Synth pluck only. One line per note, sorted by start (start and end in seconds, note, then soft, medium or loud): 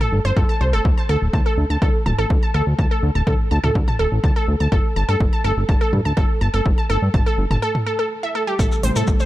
0.01 0.11 A4 loud
0.25 0.29 C5 loud
0.37 0.41 A4 medium
0.49 0.59 A5 medium
0.61 0.72 C5 medium
0.73 0.80 A4 loud
0.98 1.04 A5 medium
1.09 1.20 A4 loud
1.33 1.41 A5 medium
1.46 1.56 A4 medium
1.70 1.77 A5 medium
1.82 1.93 A4 loud
2.06 2.13 A5 medium
2.18 2.29 A4 loud
2.43 2.50 A5 medium
2.54 2.65 A4 loud
2.79 2.86 A5 medium
2.91 3.01 A4 loud
3.15 3.22 A5 medium
3.27 3.38 A4 loud
3.51 3.58 A5 medium
3.64 3.74 A4 medium
3.88 3.95 A5 medium
3.99 4.11 A4 medium
4.24 4.31 A5 medium
4.36 4.47 A4 loud
4.60 4.67 A5 medium
4.72 4.83 A4 loud
4.96 5.04 A5 medium
5.09 5.19 A4 loud
5.33 5.40 A5 medium
5.44 5.56 A4 loud
5.69 5.76 A5 medium
5.81 5.92 A4 loud
6.05 6.12 A5 medium
6.17 6.28 A4 loud
6.41 6.49 A5 medium
6.54 6.64 A4 loud
6.78 6.85 A5 medium
6.90 7.01 A4 loud
7.14 7.21 A5 medium
7.26 7.37 A4 medium
7.51 7.58 A5 medium
7.62 7.73 A4 loud
7.86 7.94 A4 medium
7.99 8.06 A4 medium
8.23 8.30 E5 medium
8.35 8.46 A4 medium
8.47 8.54 G4 medium
8.59 8.70 A4 loud
8.83 8.91 C5 medium
8.96 9.06 A4 loud
9.20 9.26 C5 medium